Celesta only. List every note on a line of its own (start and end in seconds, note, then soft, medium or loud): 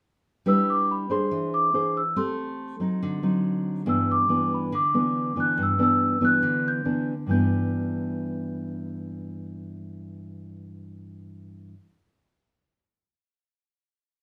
0.48 0.69 E6 medium
0.70 0.88 D6 medium
0.91 1.11 B5 medium
1.12 1.50 C6 medium
1.54 1.93 D6 medium
1.97 2.18 E6 medium
2.17 3.40 C6 medium
3.89 4.10 E6 medium
4.11 4.50 D6 medium
4.54 4.72 B5 medium
4.75 5.39 D6 medium
5.40 5.60 F#6 medium
5.63 5.82 E6 medium
5.83 6.25 E6 medium
6.25 6.67 F#6 medium
6.68 7.06 G6 medium
7.31 11.72 G6 medium